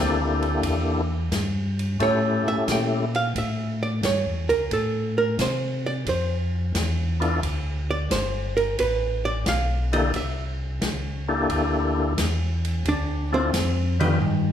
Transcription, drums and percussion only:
0.42 ride
0.63 kick, ride
1.32 kick, snare, hi-hat pedal, ride
1.79 ride
2.00 kick, ride
2.68 kick, snare, hi-hat pedal, ride
3.15 ride
3.36 kick, ride
4.03 kick, snare, hi-hat pedal, ride
4.50 ride
4.71 kick, ride
5.39 kick, snare, hi-hat pedal, ride
6.06 kick, ride
6.75 kick, snare, hi-hat pedal, ride
7.22 ride
7.43 kick, ride
8.11 kick, snare, hi-hat pedal, ride
8.57 ride
8.78 kick, ride
9.46 kick, snare, hi-hat pedal, ride
9.93 ride
10.14 kick, ride
10.81 kick, snare, hi-hat pedal, ride
11.50 kick, ride
12.18 kick, snare, hi-hat pedal, ride
12.65 ride
12.85 kick, ride
13.53 kick, snare, hi-hat pedal, ride
14.00 ride
14.21 floor tom

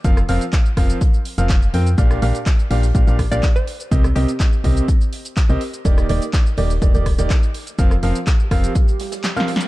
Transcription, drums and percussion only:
0.04 kick, closed hi-hat, shaker
0.17 cross-stick, shaker
0.28 closed hi-hat, open hi-hat
0.41 closed hi-hat, shaker
0.53 kick, snare, clap, closed hi-hat, shaker
0.66 shaker
0.77 kick, cross-stick, closed hi-hat, open hi-hat
0.89 closed hi-hat, shaker
1.01 kick, closed hi-hat, shaker
1.14 shaker
1.25 closed hi-hat, open hi-hat
1.37 closed hi-hat, shaker
1.49 kick, snare, clap, closed hi-hat, shaker
1.62 shaker
1.74 closed hi-hat, open hi-hat
1.86 closed hi-hat, shaker
1.98 kick, closed hi-hat, shaker
2.11 cross-stick, snare, shaker
2.22 closed hi-hat, open hi-hat
2.35 closed hi-hat, shaker
2.46 kick, snare, clap, closed hi-hat, shaker
2.59 shaker
2.71 open hi-hat
2.83 snare, closed hi-hat, shaker
2.95 kick, closed hi-hat, shaker
3.07 closed hi-hat, shaker
3.19 kick, cross-stick, closed hi-hat, open hi-hat
3.32 closed hi-hat, shaker
3.43 kick, snare, clap, closed hi-hat, shaker
3.56 shaker
3.67 closed hi-hat, open hi-hat
3.80 closed hi-hat, shaker
3.91 kick, closed hi-hat, shaker
4.04 cross-stick, shaker
4.15 closed hi-hat, open hi-hat
4.29 closed hi-hat, shaker
4.40 kick, snare, clap, closed hi-hat, shaker
4.53 shaker
4.64 kick, closed hi-hat, open hi-hat
4.76 closed hi-hat, shaker
4.88 kick, closed hi-hat, shaker
5.01 shaker
5.13 closed hi-hat, open hi-hat
5.25 closed hi-hat, shaker
5.37 kick, snare, clap, closed hi-hat, shaker
5.49 shaker
5.61 closed hi-hat, open hi-hat
5.74 closed hi-hat, shaker
5.85 kick, closed hi-hat, shaker
5.97 cross-stick, snare, shaker
6.09 closed hi-hat, open hi-hat
6.22 closed hi-hat, shaker
6.33 kick, snare, clap, closed hi-hat, shaker
6.46 shaker
6.57 open hi-hat
6.70 snare, closed hi-hat, shaker
6.82 kick, closed hi-hat, shaker
6.94 closed hi-hat, shaker
7.06 kick, cross-stick, closed hi-hat, open hi-hat
7.19 closed hi-hat, shaker
7.30 kick, snare, clap, closed hi-hat, shaker
7.43 shaker
7.54 closed hi-hat, open hi-hat
7.67 closed hi-hat, shaker
7.79 kick, closed hi-hat, shaker
7.91 cross-stick, shaker
8.03 closed hi-hat, open hi-hat
8.15 closed hi-hat, shaker
8.27 kick, snare, clap, closed hi-hat, shaker
8.40 shaker
8.51 kick, cross-stick, closed hi-hat, open hi-hat
8.64 closed hi-hat, shaker
8.75 kick, closed hi-hat, shaker
8.88 shaker
9.00 snare, closed hi-hat, open hi-hat
9.12 snare, closed hi-hat, shaker
9.24 snare, clap, closed hi-hat, shaker
9.37 snare, shaker
9.47 snare, closed hi-hat, open hi-hat
9.56 snare
9.60 snare, closed hi-hat, shaker

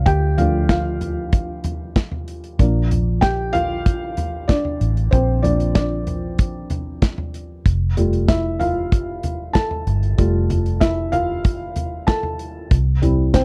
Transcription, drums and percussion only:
0.06 kick, closed hi-hat
0.38 closed hi-hat, floor tom
0.69 kick, snare, closed hi-hat
1.01 closed hi-hat, floor tom
1.33 kick, closed hi-hat
1.64 closed hi-hat, floor tom
1.96 kick, snare, closed hi-hat
2.12 floor tom
2.28 closed hi-hat
2.44 closed hi-hat
2.59 kick, closed hi-hat
2.91 closed hi-hat, floor tom
3.22 kick, snare, closed hi-hat
3.55 closed hi-hat, floor tom
3.86 kick, closed hi-hat
4.17 closed hi-hat, floor tom
4.49 kick, snare, closed hi-hat
4.65 floor tom
4.81 closed hi-hat
4.97 closed hi-hat
5.13 kick, closed hi-hat
5.44 closed hi-hat, floor tom
5.60 closed hi-hat
5.75 kick, snare, closed hi-hat
6.07 closed hi-hat, floor tom
6.38 kick, closed hi-hat
6.70 closed hi-hat, floor tom
7.02 kick, snare, closed hi-hat
7.18 floor tom
7.34 closed hi-hat
7.66 kick, closed hi-hat
7.97 closed hi-hat, floor tom
8.13 closed hi-hat
8.28 kick, snare, closed hi-hat
8.61 closed hi-hat, floor tom
8.92 kick, closed hi-hat
9.23 closed hi-hat, floor tom
9.55 kick, snare, closed hi-hat
9.71 floor tom
9.87 closed hi-hat
10.03 closed hi-hat
10.18 kick, closed hi-hat
10.50 closed hi-hat, floor tom
10.66 closed hi-hat
10.81 kick, snare, closed hi-hat
11.13 closed hi-hat, floor tom
11.44 kick, closed hi-hat
11.76 closed hi-hat, floor tom
12.07 kick, snare, closed hi-hat
12.23 floor tom
12.39 closed hi-hat
12.71 kick, closed hi-hat
13.03 closed hi-hat, floor tom
13.34 kick, snare, closed hi-hat

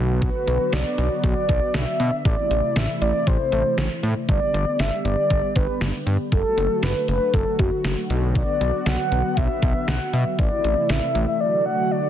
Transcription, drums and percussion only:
0.22 kick, closed hi-hat
0.47 closed hi-hat
0.73 snare, closed hi-hat
0.98 closed hi-hat
1.24 kick, closed hi-hat
1.49 kick, closed hi-hat
1.74 snare, closed hi-hat
2.00 closed hi-hat
2.25 kick, closed hi-hat
2.51 closed hi-hat
2.76 snare, closed hi-hat
3.02 closed hi-hat
3.27 kick, closed hi-hat
3.52 closed hi-hat
3.78 snare, closed hi-hat
4.03 closed hi-hat
4.29 kick, closed hi-hat
4.54 closed hi-hat
4.79 snare, closed hi-hat
5.05 closed hi-hat
5.30 kick, closed hi-hat
5.56 kick, closed hi-hat
5.81 snare, closed hi-hat
6.07 closed hi-hat
6.32 kick, closed hi-hat
6.58 closed hi-hat
6.83 snare, closed hi-hat
7.08 closed hi-hat
7.34 kick, closed hi-hat
7.59 kick, closed hi-hat
7.84 snare, closed hi-hat
8.10 closed hi-hat
8.35 kick, closed hi-hat
8.61 closed hi-hat
8.86 snare, closed hi-hat
9.12 closed hi-hat
9.37 kick, closed hi-hat
9.62 kick, closed hi-hat
9.88 snare, closed hi-hat
10.13 closed hi-hat
10.39 kick, closed hi-hat
10.64 closed hi-hat
10.89 snare, closed hi-hat
11.15 closed hi-hat

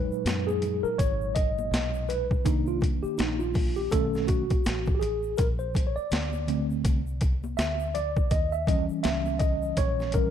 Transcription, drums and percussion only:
0.12 shaker
0.26 snare, closed hi-hat, high conga, shaker
0.49 high conga, shaker
0.62 closed hi-hat, low conga, shaker
0.85 shaker
0.99 kick, closed hi-hat, shaker
1.21 shaker
1.36 kick, closed hi-hat, shaker
1.59 high conga, shaker
1.73 snare, closed hi-hat, shaker
1.94 shaker
2.09 closed hi-hat, low conga, shaker
2.31 kick, shaker
2.45 kick, closed hi-hat, shaker
2.67 shaker
2.81 kick, closed hi-hat, high conga, low conga, shaker
3.04 shaker
3.18 snare, closed hi-hat, high conga, shaker
3.40 high conga, shaker
3.54 kick, open hi-hat, low conga, shaker
3.76 shaker
3.91 kick, closed hi-hat, shaker
4.14 snare, shaker
4.28 kick, closed hi-hat, shaker
4.50 kick, closed hi-hat, high conga, shaker
4.64 snare, closed hi-hat, shaker
4.86 kick, shaker
5.01 closed hi-hat, low conga, shaker
5.23 shaker
5.37 kick, closed hi-hat, shaker
5.59 shaker
5.74 kick, closed hi-hat, high conga, low conga, shaker
5.97 shaker
6.11 snare, closed hi-hat, high conga, shaker
6.33 high conga, shaker
6.48 closed hi-hat, low conga, shaker
6.70 shaker
6.85 kick, closed hi-hat, shaker
7.07 shaker
7.21 kick, closed hi-hat, shaker
7.44 high conga, shaker
7.58 snare, closed hi-hat, shaker
7.80 shaker
7.95 closed hi-hat, low conga, shaker
8.16 kick, shaker
8.30 kick, closed hi-hat, shaker
8.52 shaker
8.67 kick, closed hi-hat, high conga, low conga, shaker
8.89 shaker
9.04 snare, closed hi-hat, high conga, shaker
9.26 high conga, shaker
9.39 kick, closed hi-hat, low conga, shaker
9.62 shaker
9.77 kick, closed hi-hat, shaker
10.00 snare, shaker
10.12 kick, closed hi-hat, shaker

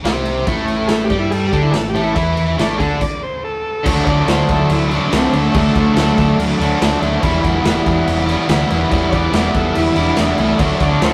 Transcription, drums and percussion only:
0.05 snare, crash
0.25 crash
0.47 kick, crash
0.68 crash
0.88 snare, crash
1.10 kick, crash
1.32 crash
1.53 kick, crash
1.73 snare, crash
1.95 crash
2.16 kick, crash
2.37 crash
2.59 snare, crash
2.80 kick, crash
3.01 kick, crash
3.86 kick, crash
4.07 kick, crash
4.28 snare, crash
4.49 kick, crash
4.70 crash
4.91 crash
5.12 snare, crash
5.33 crash
5.54 kick, crash
5.75 kick, crash
5.96 snare, crash
6.18 kick, crash
6.40 crash
6.61 crash
6.82 snare, crash
7.03 crash
7.23 kick, crash
7.44 kick, crash
7.65 snare, crash
7.86 kick, crash
8.08 crash
8.29 crash
8.49 snare, crash
8.70 crash
8.92 kick, crash
9.13 kick, crash
9.33 snare, crash
9.54 kick, crash
9.75 crash
9.96 crash
10.16 snare, crash
10.38 crash
10.59 kick, crash
10.80 kick, crash
11.02 snare, crash

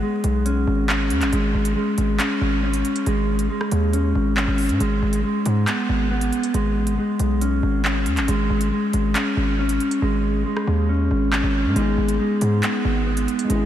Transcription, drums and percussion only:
0.24 closed hi-hat
0.46 closed hi-hat
0.89 clap
1.10 closed hi-hat
1.21 clap, closed hi-hat
1.33 closed hi-hat
1.65 closed hi-hat
1.98 closed hi-hat
2.20 clap, closed hi-hat
2.74 closed hi-hat
2.85 closed hi-hat
2.96 closed hi-hat
3.06 closed hi-hat
3.39 closed hi-hat
3.61 cross-stick
3.71 closed hi-hat
3.93 closed hi-hat
4.37 clap
4.58 open hi-hat
4.69 closed hi-hat
4.80 closed hi-hat
5.13 closed hi-hat
5.45 closed hi-hat
5.67 clap, closed hi-hat
6.21 closed hi-hat
6.33 closed hi-hat
6.43 closed hi-hat
6.54 closed hi-hat
6.87 closed hi-hat
7.19 closed hi-hat
7.41 closed hi-hat
7.85 clap
8.06 closed hi-hat
8.17 clap, closed hi-hat
8.28 closed hi-hat
8.61 closed hi-hat
8.93 closed hi-hat
9.15 clap, closed hi-hat
9.69 closed hi-hat
9.80 closed hi-hat
9.91 closed hi-hat
10.57 cross-stick
11.33 clap
11.76 closed hi-hat
12.09 closed hi-hat
12.41 closed hi-hat
12.63 clap, closed hi-hat
13.17 closed hi-hat
13.28 closed hi-hat
13.39 closed hi-hat
13.50 closed hi-hat

